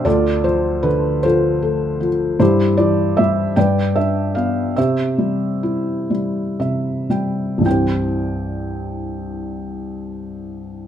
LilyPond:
<<
  \new Staff \with { instrumentName = "Felt piano" } { \time 6/8 \key c \major \tempo 4. = 48 << { d''8 c''8 b'8 c''4 r8 | c''8 d''8 e''8 g''8 e''8 f''8 | e''2~ e''8 r8 | g''2. | } \\ { <f' a'>4. <f' a'>4. | <e' g'>4. <b' d''>4. | <g' c''>2~ <g' c''>8 r8 | r2. | } >> }
  \new Staff \with { instrumentName = "Felt piano" } { \clef bass \time 6/8 \key c \major d,8 f8 d8 f8 a8 f8 | g,8 e8 g8 g,8 d'8 b8 | c8 g8 e'8 g8 <c e''>8 <g g''>8 | <c, g, e c' g' c''>2. | }
>>